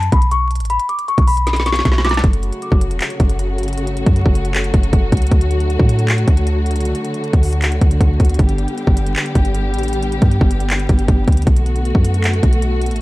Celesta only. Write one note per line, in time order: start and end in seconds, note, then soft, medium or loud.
0.12 0.27 B5 medium
0.32 0.46 C#6 medium
0.70 0.85 B5 medium
0.89 1.04 D6 medium
1.08 1.23 C#6 medium
1.28 1.64 B5 medium
1.66 2.02 C#6 medium
2.05 2.19 D6 medium